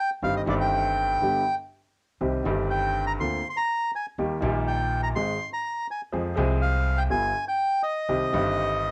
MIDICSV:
0, 0, Header, 1, 4, 480
1, 0, Start_track
1, 0, Key_signature, -3, "minor"
1, 0, Tempo, 490998
1, 227, Time_signature, 4, 2, 24, 8
1, 8712, End_track
2, 0, Start_track
2, 0, Title_t, "Bandoneon"
2, 0, Program_c, 0, 23
2, 0, Note_on_c, 0, 79, 74
2, 102, Note_off_c, 0, 79, 0
2, 234, Note_on_c, 0, 77, 75
2, 342, Note_off_c, 0, 77, 0
2, 359, Note_on_c, 0, 75, 61
2, 411, Note_off_c, 0, 75, 0
2, 483, Note_on_c, 0, 74, 61
2, 534, Note_off_c, 0, 74, 0
2, 595, Note_on_c, 0, 79, 70
2, 1514, Note_off_c, 0, 79, 0
2, 2641, Note_on_c, 0, 79, 63
2, 2980, Note_off_c, 0, 79, 0
2, 2996, Note_on_c, 0, 82, 75
2, 3053, Note_off_c, 0, 82, 0
2, 3130, Note_on_c, 0, 84, 72
2, 3400, Note_off_c, 0, 84, 0
2, 3418, Note_on_c, 0, 84, 59
2, 3486, Note_on_c, 0, 82, 74
2, 3487, Note_off_c, 0, 84, 0
2, 3821, Note_off_c, 0, 82, 0
2, 3864, Note_on_c, 0, 80, 59
2, 3968, Note_off_c, 0, 80, 0
2, 4568, Note_on_c, 0, 79, 61
2, 4898, Note_off_c, 0, 79, 0
2, 4916, Note_on_c, 0, 82, 74
2, 4970, Note_off_c, 0, 82, 0
2, 5039, Note_on_c, 0, 84, 80
2, 5371, Note_off_c, 0, 84, 0
2, 5408, Note_on_c, 0, 82, 75
2, 5736, Note_off_c, 0, 82, 0
2, 5778, Note_on_c, 0, 80, 59
2, 5879, Note_off_c, 0, 80, 0
2, 6470, Note_on_c, 0, 77, 70
2, 6822, Note_on_c, 0, 79, 77
2, 6837, Note_off_c, 0, 77, 0
2, 6877, Note_off_c, 0, 79, 0
2, 6952, Note_on_c, 0, 80, 80
2, 7282, Note_off_c, 0, 80, 0
2, 7316, Note_on_c, 0, 79, 75
2, 7645, Note_off_c, 0, 79, 0
2, 7656, Note_on_c, 0, 75, 70
2, 8712, Note_off_c, 0, 75, 0
2, 8712, End_track
3, 0, Start_track
3, 0, Title_t, "Upright piano"
3, 0, Program_c, 1, 0
3, 220, Note_on_c, 1, 51, 38
3, 222, Note_on_c, 1, 43, 51
3, 225, Note_on_c, 1, 55, 38
3, 226, Note_on_c, 1, 31, 46
3, 227, Note_on_c, 1, 60, 39
3, 229, Note_on_c, 1, 67, 44
3, 425, Note_off_c, 1, 51, 0
3, 426, Note_off_c, 1, 43, 0
3, 428, Note_off_c, 1, 31, 0
3, 428, Note_off_c, 1, 55, 0
3, 429, Note_off_c, 1, 60, 0
3, 430, Note_off_c, 1, 67, 0
3, 453, Note_on_c, 1, 51, 60
3, 463, Note_on_c, 1, 55, 51
3, 470, Note_on_c, 1, 31, 65
3, 471, Note_on_c, 1, 43, 71
3, 477, Note_on_c, 1, 60, 53
3, 490, Note_on_c, 1, 67, 61
3, 1144, Note_off_c, 1, 51, 0
3, 1149, Note_off_c, 1, 55, 0
3, 1153, Note_off_c, 1, 31, 0
3, 1154, Note_off_c, 1, 43, 0
3, 1157, Note_off_c, 1, 60, 0
3, 1163, Note_off_c, 1, 67, 0
3, 1191, Note_on_c, 1, 50, 32
3, 1193, Note_on_c, 1, 55, 31
3, 1194, Note_on_c, 1, 59, 33
3, 1196, Note_on_c, 1, 43, 43
3, 1197, Note_on_c, 1, 31, 42
3, 1199, Note_on_c, 1, 67, 39
3, 1392, Note_off_c, 1, 50, 0
3, 1392, Note_off_c, 1, 55, 0
3, 1393, Note_off_c, 1, 59, 0
3, 1394, Note_off_c, 1, 43, 0
3, 1395, Note_off_c, 1, 31, 0
3, 1396, Note_off_c, 1, 67, 0
3, 2156, Note_on_c, 1, 51, 37
3, 2158, Note_on_c, 1, 36, 43
3, 2158, Note_on_c, 1, 48, 44
3, 2162, Note_on_c, 1, 55, 31
3, 2162, Note_on_c, 1, 60, 35
3, 2164, Note_on_c, 1, 67, 41
3, 2360, Note_off_c, 1, 51, 0
3, 2361, Note_off_c, 1, 36, 0
3, 2361, Note_off_c, 1, 48, 0
3, 2363, Note_off_c, 1, 55, 0
3, 2363, Note_off_c, 1, 60, 0
3, 2364, Note_off_c, 1, 67, 0
3, 2383, Note_on_c, 1, 51, 53
3, 2394, Note_on_c, 1, 55, 49
3, 2402, Note_on_c, 1, 31, 68
3, 2403, Note_on_c, 1, 43, 67
3, 2410, Note_on_c, 1, 60, 46
3, 2423, Note_on_c, 1, 67, 56
3, 3083, Note_off_c, 1, 51, 0
3, 3088, Note_off_c, 1, 55, 0
3, 3092, Note_off_c, 1, 31, 0
3, 3093, Note_off_c, 1, 43, 0
3, 3096, Note_off_c, 1, 60, 0
3, 3103, Note_off_c, 1, 67, 0
3, 3132, Note_on_c, 1, 50, 42
3, 3134, Note_on_c, 1, 58, 34
3, 3135, Note_on_c, 1, 38, 39
3, 3139, Note_on_c, 1, 65, 42
3, 3142, Note_on_c, 1, 60, 37
3, 3333, Note_off_c, 1, 38, 0
3, 3333, Note_off_c, 1, 58, 0
3, 3334, Note_off_c, 1, 50, 0
3, 3335, Note_off_c, 1, 65, 0
3, 3336, Note_off_c, 1, 60, 0
3, 4090, Note_on_c, 1, 39, 48
3, 4090, Note_on_c, 1, 51, 49
3, 4093, Note_on_c, 1, 55, 36
3, 4094, Note_on_c, 1, 58, 32
3, 4097, Note_on_c, 1, 67, 46
3, 4288, Note_off_c, 1, 39, 0
3, 4289, Note_off_c, 1, 55, 0
3, 4289, Note_off_c, 1, 58, 0
3, 4290, Note_off_c, 1, 51, 0
3, 4291, Note_off_c, 1, 67, 0
3, 4306, Note_on_c, 1, 51, 56
3, 4319, Note_on_c, 1, 55, 51
3, 4327, Note_on_c, 1, 46, 69
3, 4329, Note_on_c, 1, 34, 65
3, 4336, Note_on_c, 1, 58, 58
3, 4347, Note_on_c, 1, 67, 62
3, 4994, Note_off_c, 1, 51, 0
3, 5001, Note_off_c, 1, 55, 0
3, 5005, Note_off_c, 1, 46, 0
3, 5006, Note_off_c, 1, 34, 0
3, 5009, Note_off_c, 1, 58, 0
3, 5015, Note_off_c, 1, 67, 0
3, 5040, Note_on_c, 1, 51, 41
3, 5044, Note_on_c, 1, 56, 32
3, 5046, Note_on_c, 1, 32, 48
3, 5046, Note_on_c, 1, 44, 46
3, 5050, Note_on_c, 1, 60, 33
3, 5050, Note_on_c, 1, 68, 40
3, 5240, Note_off_c, 1, 51, 0
3, 5241, Note_off_c, 1, 56, 0
3, 5242, Note_off_c, 1, 32, 0
3, 5243, Note_off_c, 1, 44, 0
3, 5244, Note_off_c, 1, 60, 0
3, 5245, Note_off_c, 1, 68, 0
3, 5989, Note_on_c, 1, 53, 49
3, 5993, Note_on_c, 1, 56, 39
3, 5995, Note_on_c, 1, 60, 37
3, 5996, Note_on_c, 1, 68, 50
3, 5997, Note_on_c, 1, 41, 49
3, 6192, Note_off_c, 1, 53, 0
3, 6192, Note_off_c, 1, 56, 0
3, 6192, Note_off_c, 1, 60, 0
3, 6193, Note_off_c, 1, 41, 0
3, 6193, Note_off_c, 1, 68, 0
3, 6215, Note_on_c, 1, 53, 54
3, 6223, Note_on_c, 1, 56, 61
3, 6232, Note_on_c, 1, 36, 68
3, 6236, Note_on_c, 1, 48, 76
3, 6240, Note_on_c, 1, 60, 58
3, 6252, Note_on_c, 1, 68, 71
3, 6902, Note_off_c, 1, 53, 0
3, 6906, Note_off_c, 1, 56, 0
3, 6910, Note_off_c, 1, 36, 0
3, 6912, Note_off_c, 1, 48, 0
3, 6914, Note_off_c, 1, 60, 0
3, 6920, Note_off_c, 1, 68, 0
3, 6944, Note_on_c, 1, 50, 37
3, 6946, Note_on_c, 1, 31, 46
3, 6947, Note_on_c, 1, 43, 44
3, 6947, Note_on_c, 1, 55, 32
3, 6949, Note_on_c, 1, 59, 33
3, 6950, Note_on_c, 1, 65, 43
3, 7145, Note_off_c, 1, 50, 0
3, 7146, Note_off_c, 1, 31, 0
3, 7147, Note_off_c, 1, 43, 0
3, 7147, Note_off_c, 1, 55, 0
3, 7148, Note_off_c, 1, 59, 0
3, 7148, Note_off_c, 1, 65, 0
3, 7908, Note_on_c, 1, 55, 37
3, 7909, Note_on_c, 1, 51, 38
3, 7910, Note_on_c, 1, 36, 50
3, 7910, Note_on_c, 1, 48, 45
3, 7910, Note_on_c, 1, 60, 33
3, 7912, Note_on_c, 1, 67, 45
3, 8109, Note_off_c, 1, 36, 0
3, 8109, Note_off_c, 1, 51, 0
3, 8109, Note_off_c, 1, 55, 0
3, 8109, Note_off_c, 1, 60, 0
3, 8110, Note_off_c, 1, 48, 0
3, 8110, Note_off_c, 1, 67, 0
3, 8140, Note_on_c, 1, 51, 59
3, 8151, Note_on_c, 1, 55, 48
3, 8152, Note_on_c, 1, 43, 70
3, 8155, Note_on_c, 1, 31, 62
3, 8162, Note_on_c, 1, 60, 54
3, 8174, Note_on_c, 1, 67, 66
3, 8712, Note_off_c, 1, 31, 0
3, 8712, Note_off_c, 1, 43, 0
3, 8712, Note_off_c, 1, 51, 0
3, 8712, Note_off_c, 1, 55, 0
3, 8712, Note_off_c, 1, 60, 0
3, 8712, Note_off_c, 1, 67, 0
3, 8712, End_track
4, 0, Start_track
4, 0, Title_t, "Upright bass"
4, 0, Program_c, 2, 32
4, 220, Note_on_c, 2, 31, 53
4, 425, Note_off_c, 2, 31, 0
4, 463, Note_on_c, 2, 31, 78
4, 1150, Note_off_c, 2, 31, 0
4, 1189, Note_on_c, 2, 31, 49
4, 1390, Note_off_c, 2, 31, 0
4, 2157, Note_on_c, 2, 36, 52
4, 2360, Note_off_c, 2, 36, 0
4, 2396, Note_on_c, 2, 31, 68
4, 3089, Note_off_c, 2, 31, 0
4, 3125, Note_on_c, 2, 38, 46
4, 3328, Note_off_c, 2, 38, 0
4, 4087, Note_on_c, 2, 39, 55
4, 4286, Note_off_c, 2, 39, 0
4, 4320, Note_on_c, 2, 34, 84
4, 5001, Note_off_c, 2, 34, 0
4, 5041, Note_on_c, 2, 32, 51
4, 5240, Note_off_c, 2, 32, 0
4, 5995, Note_on_c, 2, 41, 56
4, 6192, Note_off_c, 2, 41, 0
4, 6227, Note_on_c, 2, 36, 82
4, 6908, Note_off_c, 2, 36, 0
4, 6939, Note_on_c, 2, 31, 54
4, 7143, Note_off_c, 2, 31, 0
4, 7908, Note_on_c, 2, 36, 54
4, 8108, Note_off_c, 2, 36, 0
4, 8147, Note_on_c, 2, 31, 79
4, 8712, Note_off_c, 2, 31, 0
4, 8712, End_track
0, 0, End_of_file